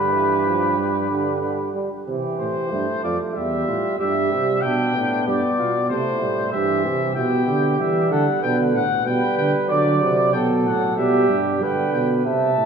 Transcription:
Already playing: bass trombone G2, trombone D3, flugelhorn G4, trumpet B4
0.13 trombone E3
0.46 trombone F3
0.78 trombone G3
1.10 trombone D3
1.42 trombone D3
1.74 trombone G3
2.07 bass trombone C3, trombone E3, flugelhorn G4
2.39 bass trombone A2, trumpet C5
2.71 bass trombone G2, trombone A3, flugelhorn E4
3.03 bass trombone F2, flugelhorn F4, trumpet D5
3.34 bass trombone E2, trombone G3, flugelhorn G4, trumpet E5
3.67 bass trombone A2, flugelhorn F4
3.99 bass trombone G2, trombone G3, flugelhorn G4, trumpet E5
4.31 bass trombone C3, flugelhorn G4
4.61 bass trombone B2, trombone B3, flugelhorn D4, trumpet G5
4.95 bass trombone A2, flugelhorn D4
5.26 bass trombone G2, flugelhorn G4, trumpet D5
5.58 bass trombone B2, flugelhorn F4
5.90 bass trombone C3, trombone A3, flugelhorn E4, trumpet C5
6.22 bass trombone A2, trombone G3
6.52 bass trombone G2, trombone E3, flugelhorn G4, trumpet E5
6.85 bass trombone C3, flugelhorn G4
7.15 bass trombone B2, trombone B3, flugelhorn G4, trumpet G5
7.47 bass trombone D3, flugelhorn G4
7.79 bass trombone E3, trombone G3, trumpet E5
8.11 bass trombone D3, flugelhorn A4, trumpet F#5
8.42 bass trombone B2, trombone D3, flugelhorn B4, trumpet G5
8.74 bass trombone A2, trumpet F#5
9.06 bass trombone B2, trombone G3, flugelhorn B4, trumpet G5
9.38 bass trombone D3, trumpet G5
9.68 bass trombone D3, trombone F#3, trumpet D5, flugelhorn D5
10.01 bass trombone C3, trumpet D5
10.33 bass trombone B2, trombone F#3, flugelhorn A4, trumpet G5
10.66 bass trombone A2, trumpet F#5
10.97 bass trombone B2, trombone G3, flugelhorn G4, trumpet E5
11.29 bass trombone G2
11.60 bass trombone G2, trombone D3, flugelhorn B4, trumpet G5
11.93 bass trombone B2, trumpet G5
12.25 bass trombone C3, flugelhorn E5, trumpet A5
12.57 bass trombone A2

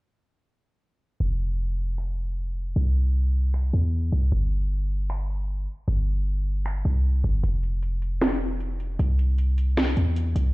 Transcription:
1.20 808-style bass F1
1.98 finger snap
2.76 808-style bass C2
3.54 finger snap
3.73 808-style bass E2
4.12 808-style bass C2
4.32 808-style bass G1
5.10 finger snap
5.88 808-style bass G1
6.66 finger snap
6.85 808-style bass C2
7.24 808-style bass G1
7.44 808-style bass F1, closed hi-hat
7.63 closed hi-hat
7.83 closed hi-hat
8.02 closed hi-hat
8.21 finger snap, snare, closed hi-hat
8.41 closed hi-hat
8.60 closed hi-hat
8.80 closed hi-hat
8.99 808-style bass C2, closed hi-hat
9.19 closed hi-hat
9.38 closed hi-hat
9.58 closed hi-hat
9.77 finger snap, snare, closed hi-hat
9.97 808-style bass E2, closed hi-hat
10.16 closed hi-hat
10.36 808-style bass C2, closed hi-hat

